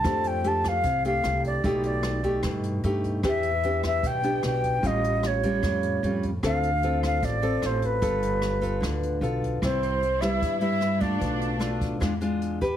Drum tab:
HH |xxxxxxxx|xxxxxxxx|xxxxxxxx|xxxxxxxx|
SD |r--r--r-|--r-r---|r--r--r-|--r-r---|
BD |o--oo--o|o--oo--o|o--oo--o|o--oo--o|

HH |xxxxxxxx|xxxxxxxx|xxxxxxxx|xxxxxxxx|
SD |r--r--r-|--r-r---|r--r--r-|--r-r---|
BD |o--oo--o|o--oo--o|o---o--o|o--oo--o|